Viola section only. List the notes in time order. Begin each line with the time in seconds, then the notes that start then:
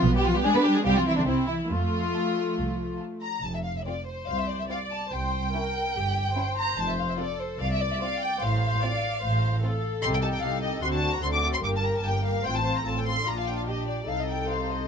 0.04 B3
0.44 D4
0.85 C4
1.27 E4
1.69 A3
4.27 C5
4.69 D5
5.11 C5
5.53 A#4
5.96 G4
6.36 C5
7.18 A4
7.59 D5
8.41 C5
8.82 D5
9.23 C5
9.63 A4
10.83 F#4
11.23 A4
11.63 A#4
12.44 C5
12.85 A4
13.27 F4
13.68 G4
14.08 A4
14.50 C5